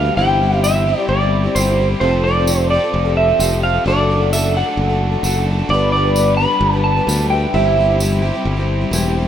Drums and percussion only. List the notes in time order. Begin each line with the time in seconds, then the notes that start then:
0.64 tambourine
1.56 tambourine
2.47 tambourine
3.40 tambourine
4.33 tambourine
5.24 tambourine
6.16 tambourine
7.09 tambourine
8.00 tambourine
8.93 tambourine